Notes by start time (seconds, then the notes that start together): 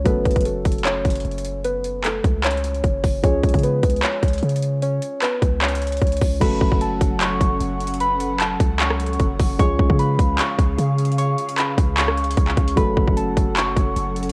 0.04 F#1 F#3 A3 C#4 A4 B4, kick, closed hi-hat
0.25 F#1, kick, closed hi-hat
0.31 closed hi-hat
0.36 F#1, kick, closed hi-hat
0.41 closed hi-hat
0.45 A4, closed hi-hat
0.65 F#1, kick, closed hi-hat
0.72 closed hi-hat
0.78 closed hi-hat
0.85 C#5, clap, closed hi-hat
1.05 F#1, kick, closed hi-hat
1.10 closed hi-hat
1.15 closed hi-hat
1.20 closed hi-hat
1.25 F#1, closed hi-hat
1.31 closed hi-hat
1.38 closed hi-hat
1.45 closed hi-hat
1.64 B4, closed hi-hat
1.84 closed hi-hat
2.04 A4, clap, closed hi-hat
2.24 C#2, kick, closed hi-hat
2.44 C#5, clap, closed hi-hat
2.51 closed hi-hat
2.57 closed hi-hat
2.64 closed hi-hat
2.74 closed hi-hat
2.84 F#1, kick, closed hi-hat
3.04 F#1, kick, open hi-hat
3.22 C#2 F3 G#3 C#4 G#4 C#5, kick, closed hi-hat
3.43 C#2, kick, closed hi-hat
3.49 closed hi-hat
3.54 C#3, kick, closed hi-hat
3.59 closed hi-hat
3.63 B4, closed hi-hat
3.83 C#2, kick, closed hi-hat
3.90 closed hi-hat
3.96 closed hi-hat
4.03 C#5, clap, closed hi-hat
4.23 C#2, kick, closed hi-hat
4.28 closed hi-hat
4.33 closed hi-hat
4.38 closed hi-hat
4.43 C#3, closed hi-hat
4.49 closed hi-hat
4.56 closed hi-hat
4.63 closed hi-hat
4.82 C#5, closed hi-hat
5.02 closed hi-hat
5.22 B4, clap, closed hi-hat
5.42 C#2, kick, closed hi-hat
5.62 C#5, clap, closed hi-hat
5.69 closed hi-hat
5.75 closed hi-hat
5.82 closed hi-hat
5.87 closed hi-hat
5.92 closed hi-hat
5.97 closed hi-hat
6.02 C#2, kick, closed hi-hat
6.07 closed hi-hat
6.12 closed hi-hat
6.17 closed hi-hat
6.22 C#2, kick, open hi-hat
6.40 F#1 F#3 A3 C#4 A4 F#5 B5, kick, closed hi-hat, crash
6.61 F#1, kick
6.72 F#1, kick
6.81 A5, closed hi-hat
7.01 F#1, kick, closed hi-hat
7.21 C#6, clap, closed hi-hat
7.41 F#1, kick, closed hi-hat
7.60 F#1, closed hi-hat
7.80 closed hi-hat
7.87 closed hi-hat
7.94 closed hi-hat
8.00 B5, closed hi-hat
8.20 closed hi-hat
8.40 A5, clap, closed hi-hat
8.60 C#2, kick, closed hi-hat
8.80 C#6, clap, closed hi-hat
8.90 cross-stick
9.00 closed hi-hat
9.06 closed hi-hat
9.13 closed hi-hat
9.19 F#1, kick, closed hi-hat
9.39 F#1, kick, open hi-hat
9.58 C#2 C#3 F3 G#3 C#4 G#4 F5 C#6, kick, closed hi-hat
9.79 C#2, kick
9.90 C#3, kick
9.99 B5, closed hi-hat
10.19 C#2, kick, closed hi-hat
10.39 C#6, clap, closed hi-hat
10.59 C#2, kick, closed hi-hat
10.78 C#3, closed hi-hat
10.98 closed hi-hat
11.05 closed hi-hat
11.12 closed hi-hat
11.18 C#6, closed hi-hat
11.38 closed hi-hat
11.49 closed hi-hat
11.58 B5, clap, closed hi-hat
11.78 C#2, kick, closed hi-hat
11.98 C#6, clap, closed hi-hat
12.08 cross-stick
12.18 closed hi-hat
12.24 closed hi-hat
12.31 closed hi-hat
12.37 C#2, kick, closed hi-hat
12.48 clap
12.57 C#2, kick, closed hi-hat, open hi-hat
12.68 closed hi-hat
12.76 F#1 F#3 A3 C#4 A4 F#5 B5, kick, closed hi-hat
12.97 F#1, kick
13.08 F#1, kick
13.17 A5, closed hi-hat
13.37 F#1, kick, closed hi-hat
13.57 C#6, clap, closed hi-hat
13.76 F#1, kick, closed hi-hat
13.96 F#1, closed hi-hat
14.16 closed hi-hat
14.23 closed hi-hat